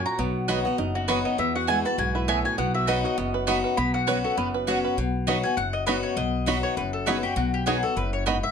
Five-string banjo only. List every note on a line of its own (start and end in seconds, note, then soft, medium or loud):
0.00 1.15 F#3 medium
0.00 0.18 C#4 medium
0.00 0.06 F#4 medium
0.06 0.48 F#4 medium
0.19 0.65 B3 medium
0.49 0.95 F#4 medium
0.65 1.25 B3 medium
0.79 1.22 D#4 medium
0.95 1.55 F#4 medium
1.09 1.85 B4 medium
1.25 1.38 B3 medium
1.39 2.28 B3 medium
1.56 1.98 F#4 medium
1.69 2.12 E4 medium
1.85 2.87 B4 medium
1.98 2.44 F#4 medium
2.15 2.55 E4 medium
2.28 2.58 B3 medium
2.45 2.74 F#4 medium
2.58 3.17 B3 medium
2.74 3.04 F#4 medium
2.88 3.34 B4 medium
3.04 3.94 F#4 medium
3.18 3.77 B3 medium
3.34 3.64 B4 medium
3.47 3.78 D#4 medium
3.64 4.07 B4 medium
3.77 4.21 B3 medium
3.94 4.23 F#4 medium
4.08 4.51 B4 medium
4.24 4.65 F#4 medium
4.38 4.81 B3 medium
4.54 4.83 B4 medium
4.68 4.98 F#4 medium
4.85 4.98 B4 medium
5.28 5.35 B3 medium
5.28 5.35 D#4 medium
5.28 5.35 F#4 medium
5.88 5.95 B3 medium
5.88 5.95 D#4 medium
5.88 5.95 F#4 medium
6.47 6.55 B3 medium
6.47 6.55 D#4 medium
6.47 6.55 F#4 medium
7.08 7.15 B3 medium
7.08 7.15 D#4 medium
7.08 7.15 F#4 medium
7.67 7.74 B3 medium
7.67 7.74 D#4 medium
7.67 7.75 F#4 medium
8.27 8.34 B3 medium
8.27 8.34 D#4 medium
8.27 8.35 F#4 medium